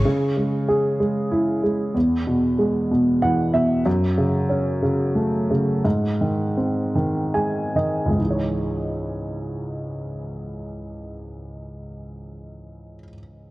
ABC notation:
X:1
M:6/8
L:1/8
Q:3/8=57
K:C#m
V:1 name="Upright piano" clef=bass
C, G, G G, E G, | E,, B,, G, B,, [E,f] [B,,e] | F,, C, C C, A, C, | G,, D, ^B, D, [G,g] [D,d] |
[C,,G,,E,DGc]6- | [C,,G,,E,DGc]6 |]